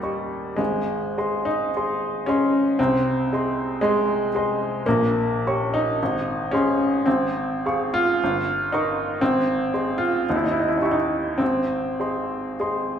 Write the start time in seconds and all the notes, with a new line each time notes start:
Already playing: D#2 G3 A#3 G4 D#5 C#6
0.03 G4 D#5 C#6
0.56 G#1 G#3
1.18 G#4 D#5 C6
1.45 D#4
1.76 G#4 D#5 C6
2.26 C#4 G#4 D#5 C6
2.79 C2 C4
3.33 G#4 D#5 C6
3.81 G#3 G#4 D#5 C6
4.35 G#4 D#5 C6
4.86 A#1 A#3
5.47 G4 C#5 C#6
5.74 D#4
6.03 G#1
6.51 C#4 G#4 D#5 C6
7.06 G#1 C4
7.66 G#4 F5 C#6
7.94 F4
8.24 G1
8.72 D#4 A#4 D#5 C#6
9.21 G#1 C4
9.74 G#4 D#5 C6
9.98 F4
10.29 D#2 D#4
10.36 E4
10.44 D#4
10.51 E4
10.60 D#4
10.68 E4
10.77 D#4 G4
10.82 E4 E5 C#6
10.91 D#4
11.38 G#1 C4
12.00 G#4 D#5 C6
12.60 G#4 D#5 C6